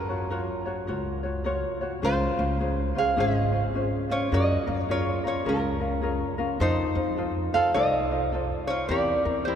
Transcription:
Already playing: F#2 A#4
0.09 F4 F#4 C#5
0.30 F4 F#4 A#4 C#5
0.66 F4 F#4 C#5
0.87 C#2 F4 F#4 A#4 C#5
1.23 F4 F#4 C#5
1.44 F4 F#4 A#4 C#5
1.81 F4 F#4 C#5
2.02 C#2 C#4 F4 G#4 C5
2.37 C#2 C#4 F4 C5
2.60 C#4 F4 G#4 C5
2.95 C#4 F4 C5 F5
2.99 G#4
3.16 G#1 C#4 F4 G#4 C5
3.20 D#5
3.52 C#4 F4 C5
3.74 C#4 F4 G#4 C5
4.09 C#4 F4 C5 C#5
4.32 F#2 C#4 F4 F#4 G#4 A#4 D#5
4.67 F#2 C#4 F4 A#4
4.79 C#5
4.89 C#4 F4 G#4 A#4 C#5
5.24 C#4 F4 A#4
5.28 C#5
5.45 C#2 C#4 F4 G#4 A#4
5.80 C#4 F4 A#4
6.02 C#4 F4 G#4 A#4
6.38 C#4 F4 A#4
6.60 F2 D#4 F4 A4 C5
6.95 F2 D#4 F4 C5
7.17 D#4 F4 A4 C5
7.53 D#4 F4 A4 C5 F5
7.74 C2 D#4 F4 A4 C5 D#5
8.10 D#4 F4 C5
8.32 D#4 F4 A4 C5
8.67 D#4 F4 C5 C#5
8.89 E2 C4 E4 G4 A#4 D5
9.25 E2 C4 E4 A#4
9.45 C4 E4 G4 A#4 C5

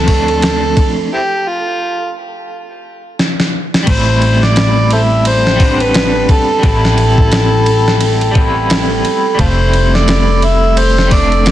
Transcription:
Already playing: D2 C4 A4 D6
0.03 F3 A3
0.08 C4, kick, open hi-hat
0.13 D4
0.28 ride
0.42 snare, ride
0.77 kick, ride
1.13 C4 E4 G4
1.48 F4
3.19 snare
3.40 snare
3.74 snare
3.83 G3 A3
3.87 A1 C4 A4 C5 G5 A5, kick, crash, ride
3.93 E4
4.22 ride
4.43 D5, snare
4.56 snare, ride
4.91 A4 C5 E5, ride
5.25 C5, ride
5.47 snare
5.56 G3 B3
5.60 C4, kick, open hi-hat
5.65 D4
5.80 B4, ride
5.94 snare, ride
6.29 A4, kick, ride
6.59 G3 B3
6.63 A1 C4 A4, kick, ride
6.68 E4
6.85 snare
6.98 ride
7.18 kick
7.32 snare, ride
7.66 ride
7.88 snare
8.01 ride
8.21 ride
8.31 G3 B3, ride
8.35 C4, kick
8.41 E4
8.70 snare, ride
9.05 ride
9.35 G3 A3
9.39 F1 C4 F4 A4 C5 E6, kick, ride
9.44 E4
9.73 ride
9.95 D5, snare
10.08 snare, ride
10.42 E5, ride
10.77 C5, ride
10.98 snare
11.07 G3 A3
11.11 C4 D5, kick, open hi-hat
11.16 D4
11.32 ride
11.46 snare, ride

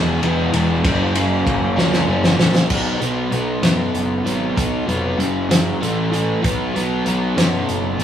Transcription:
Already playing: E1 E3 G#3 B3 E4
0.21 E1 E3 G#3 B3 E4, ride
0.52 E1 G#3 B3 E4, ride
0.83 F#1 F#2 C#3 F#3 A#3 C#4, kick, ride
1.14 F#3 A#3 C#4, ride
1.47 F#1, kick, ride
1.76 C#2 F#2 C#3 F#3 A#3 C#4, snare
1.93 snare
2.06 F#1 C#3 F#3 A#3 C#4
2.24 snare
2.38 A#1 F#3 A#3 C#4, snare
2.55 snare
2.69 B1 B2 F#3 B3, kick, crash
3.00 B1 B2 F#3 B3, closed hi-hat
3.32 B1 B2 F#3 B3, closed hi-hat
3.62 F#2 B2 F#3 B3, snare, closed hi-hat
3.94 F#1, closed hi-hat
4.25 G#1 B2 F#3 B3, closed hi-hat
4.56 B1 B2 F#3 B3, kick, closed hi-hat
4.87 F1 B2 F#3 B3, closed hi-hat
5.18 F#1 F#2 C#3 F#3, closed hi-hat
5.49 F#2 C#3 F#3, snare, closed hi-hat
5.81 A1 A2 E3 A3, closed hi-hat
6.12 A2 E3 A3, closed hi-hat
6.42 B1 B2 F#3 B3, kick, closed hi-hat
6.75 B1 B2 F#3 B3, closed hi-hat
7.06 B1 B2 F#3 B3, closed hi-hat
7.37 F#2 B2 F#3 B3, snare, closed hi-hat
7.69 F#1, closed hi-hat
7.99 G#1 B2 F#3 B3, closed hi-hat

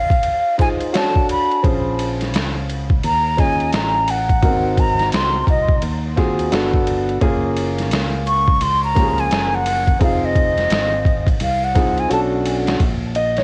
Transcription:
Already playing: D#4 F4 G#4 D#5 F5
0.10 kick, ride
0.23 ride
0.58 D#4 F4 G#4 C5 G#5, kick, snare, ride
0.80 ride
0.93 C#4 F#4 A4 C#5 A5, snare, hi-hat pedal, ride
0.99 D4
1.16 kick
1.29 B5, ride
1.51 ride
1.63 A#1 C#4 F4 G#4 C5, kick, ride
1.99 ride
2.21 snare, ride
2.34 C#2, snare, hi-hat pedal, ride
2.70 ride
2.90 kick
3.03 D#2 A#5, ride
3.37 C#4 F4 G#4 D#5 G#5, kick, snare, ride
3.60 ride
3.73 A1 A#5, snare, hi-hat pedal, ride
4.08 F#5, ride
4.29 kick, ride
4.42 G#1 A#3 D#4 F#4 A#4, kick, ride
4.48 C4
4.77 A#5, kick, ride
4.99 snare, ride
5.12 C#2 C6, snare, hi-hat pedal, ride
5.47 C2 D#5, kick, ride
5.68 kick
5.82 D#2, ride
6.16 C4 F4 F#4 G#4, kick, snare, ride
6.39 ride
6.52 G1 B3 D4 F#4 A4, snare, hi-hat pedal, ride
6.74 kick
6.87 ride
7.09 ride
7.21 F#1 A#3 C#4 F4 G#4, kick, ride
7.57 ride
7.78 snare, ride
7.91 C#2, snare, hi-hat pedal, ride
8.27 C#6, ride
8.48 kick
8.61 C#2 C6, ride
8.84 A#5
8.95 F3 A#3 C#4 G4, kick, snare, ride
9.03 G#4
9.18 G#5, ride
9.31 F#1, snare, hi-hat pedal, ride
9.55 F#5
9.66 ride
9.87 kick, ride
9.99 F1 C4 D#4 F4 G#4 F5, kick, ride
10.25 D#5
10.36 kick, ride
10.58 snare, ride
10.70 G#1, snare, hi-hat pedal, ride
11.05 kick, ride
11.27 kick, ride
11.40 C2 F5, ride
11.64 F#5
11.75 C4 D#4 F4 G#4, kick, snare, ride
11.97 G#5, ride
12.09 B1 C#4 D4 F#4 A4 A5, hi-hat pedal, ride
12.46 ride
12.67 snare, ride
12.80 A#1, kick, ride
13.15 D#5, ride
13.37 C#5, snare, ride

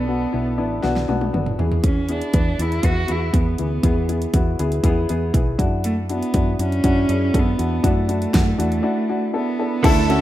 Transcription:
Already playing: B1 B2 B3 D4 E4 F#4 A4
0.08 B3 D4 F#4
0.33 B1 B3 D4 E4
0.57 A1 B3 D4 E4
0.82 B1 B3 D4 F#4, snare
0.96 snare
1.08 B1 B3 D4 F#4, high tom
1.21 high tom
1.33 F#1 B3 D4 F#4, mid tom
1.46 mid tom
1.59 E2 E3 B3 E4 G#4, floor tom
1.72 floor tom
1.84 C#4, kick, closed hi-hat
2.09 B3 D4 E4 G#4, closed hi-hat
2.21 closed hi-hat
2.33 E2 B3 E4 B4, kick, closed hi-hat
2.59 E2 B3 E4 G#4, closed hi-hat
2.72 closed hi-hat
2.83 E2 B3 E4 F#4 B4, kick, closed hi-hat
3.08 E2 B3 E4 G#4, closed hi-hat
3.33 E2 B3 E4 G#4, kick, closed hi-hat
3.58 D2 E3 B3 E4 G#4, closed hi-hat
3.83 E2 B3 E4 G#4, kick, closed hi-hat
4.09 B3 E4 G#4, closed hi-hat
4.22 closed hi-hat
4.34 E2 B3 E4 F#4, kick, closed hi-hat
4.59 D2 B3 E4 G#4, closed hi-hat
4.72 closed hi-hat
4.84 E2 B3 E4 G#4, kick, closed hi-hat
5.09 E2 B3 E4 G#4, closed hi-hat
5.34 B1 B3 E4 G#4, kick, closed hi-hat
5.58 F#2 D4 E4 F#4, kick, closed hi-hat
5.84 A3, closed hi-hat
6.09 B3 D4 E4 F#4, closed hi-hat
6.23 closed hi-hat
6.34 F#2 D4 E4 F#4, kick, closed hi-hat
6.59 F#2 C#4 D4 E4 F#4, closed hi-hat
6.72 closed hi-hat
6.84 F#2 D4 E4 F#4, kick, closed hi-hat
7.09 F#2 D4 E4 G#4, closed hi-hat
7.34 F#2 D4 E4 A4, kick, closed hi-hat
7.39 B3
7.59 E2 D4 E4 F#4, closed hi-hat
7.83 F#2 D4 E4 F#4, kick, closed hi-hat
7.87 A3
8.08 D4 E4 F#4, closed hi-hat
8.22 closed hi-hat
8.33 F#2 D4 E4 F#4, kick, snare, closed hi-hat
8.58 E2 D4 E4 F#4, closed hi-hat
8.72 closed hi-hat
8.83 D4 E4 F#4
9.09 D4 E4 F#4
9.33 B3 D4 E4 A4
9.59 D4 E4 A4
9.83 D2 D3 A3 D4 E4 A4 E5 A5 E6, kick, crash, ride
10.09 A3 C#4 D4 E4 F#4, ride

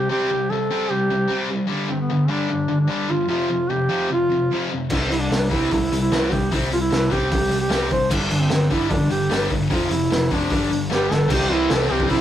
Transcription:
Already playing: G4
0.11 C3 G3 C4 G4
0.30 C3 G3
0.50 C3 G3 A4
0.70 C3 G3 C4
0.90 C3 G3 G4
1.11 C3 G3
1.31 C3 G3 C4
1.50 C3 G3
1.67 G2
1.71 G2 D3 G3
1.90 G2 D3 C4
2.01 B3
2.10 G2 D3
2.30 G2 D3 G3 D4
2.50 G2 D3
2.69 G2 D3
2.81 D4
2.90 G2 D3 G3
3.09 G2 D3 F4
3.28 F2 C3 F3 F4
3.49 F2 C3
3.69 F2 C3 G4
3.89 F2 C3 F3
4.10 F2 C3 F4
4.30 F2 C3
4.50 F2 C3 F3
4.70 F2 C3
4.90 C2 C3 G3 C4, kick, crash
5.10 C2 C3 G3 E4, open hi-hat
5.20 D4
5.31 C2 C3 G3, snare, open hi-hat
5.51 C3 G3 C4 E4, kick, open hi-hat
5.71 C2 C3 G3, kick, open hi-hat
5.92 C2 C3 G3, open hi-hat
6.01 E4
6.11 C2 C3 G3 C4, snare, open hi-hat
6.32 C2 C3 G3 G4, kick, open hi-hat
6.52 C2 C3 G3 C4, kick, open hi-hat
6.71 C2 C3 G3 F4, open hi-hat
6.81 E4
6.92 C2 C3 G3, snare, open hi-hat
7.11 C3 G3 C4 G4, kick, open hi-hat
7.31 C2 C3 G3, kick, open hi-hat
7.51 C2 C3 G3, open hi-hat
7.61 G4
7.70 C2 C3 G3 C4, snare, open hi-hat
7.91 C2 C3 G3 C5, kick, open hi-hat
8.11 G1 G2 D3 G3, kick, crash
8.30 G1 G2 D3 D4, open hi-hat
8.41 C4
8.50 G1 G2 D3, snare, open hi-hat
8.70 G2 D3 G3 E4, kick, open hi-hat
8.90 G1 G2 D3 D4, kick, open hi-hat
9.10 G1 G2 D3 G4, open hi-hat
9.30 G1 G2 D3 G3, snare, open hi-hat
9.50 G1 G2 D3, kick, open hi-hat
9.69 F1 F2 C3 F3 F4, kick, open hi-hat
9.89 F1 F2 C3 E4, open hi-hat
10.10 F1 F2 C3, snare, open hi-hat
10.31 F2 C3 F3 D4, kick, open hi-hat
10.50 G1 G2 D3 G3, kick, open hi-hat
10.70 G1 G2 D3, open hi-hat
10.90 G1 G2 D3 G3, snare
10.94 G4
11.10 G1 G2 D3 A4, snare
11.30 C2 C3 E3 G3 C4 E4 G4, kick, crash
11.50 C2 C3 E3 G3 C4 E4
11.69 C2 C3 E3 G3 C4 E4, snare, open hi-hat
11.74 A4
11.90 C2 C3 E3 G3 C4 E4 G4
12.00 kick
12.09 C3 E3 G3 C4 E4, kick, open hi-hat

